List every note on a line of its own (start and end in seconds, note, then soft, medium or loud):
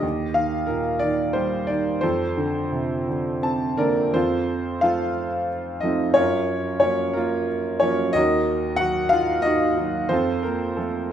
0.00 1.99 D#2 medium
0.00 0.65 G4 medium
0.00 0.38 D#5 medium
0.34 1.01 D#3 medium
0.34 0.69 F5 medium
0.67 1.99 A#2 soft
0.67 0.99 A#4 medium
0.99 1.68 D#3 medium
0.99 1.35 D5 medium
1.33 2.01 G3 medium
1.33 1.69 C5 medium
1.67 2.03 D#3 medium
1.67 2.03 D5 medium
2.01 4.09 F2 medium
2.01 3.39 A4 medium
2.01 3.38 C5 medium
2.37 3.07 D3 medium
2.72 4.09 C3 soft
3.08 3.77 D3 medium
3.43 4.11 C4 soft
3.43 3.76 A5 medium
3.78 4.13 D3 medium
3.78 4.12 A#3 medium
3.78 4.11 A#4 medium
3.78 4.11 D5 medium
4.13 6.12 F2 medium
4.13 4.80 C4 medium
4.13 4.80 F4 medium
4.13 4.80 A4 soft
4.13 4.79 C5 medium
4.81 5.48 F3 soft
4.81 5.48 A3 soft
4.81 5.48 C4 soft
4.81 5.80 F4 medium
4.81 5.80 A4 medium
4.81 5.78 F5 medium
5.80 6.15 F3 soft
5.80 6.16 A3 soft
5.80 6.16 C4 medium
5.80 6.14 D#4 medium
5.80 6.16 D#5 medium
6.14 8.11 F#2 medium
6.14 6.79 C#4 medium
6.14 6.79 F4 medium
6.14 6.79 A#4 medium
6.14 6.77 C#5 medium
6.80 7.47 F3 soft
6.80 7.47 F#3 soft
6.80 7.15 A#3 soft
6.80 7.14 C#4 medium
6.80 7.12 C#5 medium
7.13 7.79 A#3 medium
7.13 7.79 F4 medium
7.13 7.83 A#4 medium
7.80 8.14 F3 soft
7.80 8.14 F#3 soft
7.80 8.14 A#3 medium
7.80 8.13 C#4 medium
7.80 8.15 C#5 medium
8.13 10.07 D#2 medium
8.13 8.76 D#4 medium
8.13 8.76 F#4 medium
8.13 8.76 A#4 medium
8.13 8.75 D#5 loud
8.76 9.42 D#3 soft
8.76 9.42 F#3 soft
8.76 9.43 D#4 soft
8.76 9.10 F#4 medium
8.76 9.12 F#5 medium
9.09 9.44 F5 loud
9.13 9.43 F4 medium
9.42 9.76 D#4 medium
9.42 10.08 F#4 medium
9.42 10.12 D#5 loud
9.77 10.10 D#3 soft
9.77 10.10 F#3 soft
9.77 10.10 D#4 medium
10.09 11.12 F2 medium
10.09 10.43 C4 medium
10.09 10.43 F4 medium
10.09 10.43 A4 medium
10.09 10.41 C5 medium
10.43 10.77 A#3 soft
10.43 10.75 A#4 medium
10.76 11.12 F3 soft
10.76 11.12 A3 soft
10.76 11.12 C4 soft
10.76 11.12 A4 medium